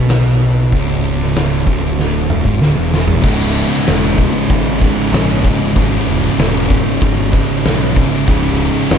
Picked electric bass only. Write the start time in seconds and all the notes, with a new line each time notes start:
Already playing: B1
0.73 C#1
1.66 D1
2.46 G#1
2.62 D1
2.78 E1
3.24 C#1
3.88 E1
4.50 G#1
5.12 A#1
5.76 G#1
6.07 E1
6.38 E1
7.02 G#1
7.65 B1
8.28 C#1
8.90 E1